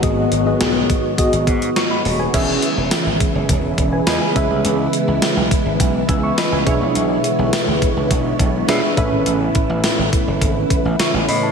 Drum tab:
CC |----------------|x---------------|----------------|----------------|
HH |x-x-x-x-xxxxx-o-|x-x-x-x-x-x-x-x-|x-x-x-x-x-x-x-x-|x-x-x-x-x-x-x-x-|
TB |----------------|----x-------x---|----x-------x---|----x-------x---|
SD |----o-------o---|----o-------o---|----o-------o---|----o-------o---|
BD |o-----o-o-o-----|o-----o-o-o---o-|------o-o-o---o-|------o-o-o---o-|

CC |----------------|
HH |x-x-x-x-x-x-x-o-|
TB |----x-------x---|
SD |----o-------o---|
BD |--o---o-o-o-----|